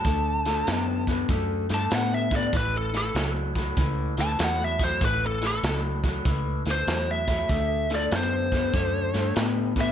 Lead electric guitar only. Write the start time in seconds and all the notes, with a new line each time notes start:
Already playing: A5
1.74 A5
1.95 F#5
2.14 E5
2.36 D5
2.57 B4
2.78 A4
2.98 A4
4.21 A5
4.44 F#5
4.64 E5
4.84 C5
5.05 B4
5.27 A4
5.47 A4
6.71 C5
7.11 E5
7.95 D5
8.15 C5
9.81 E5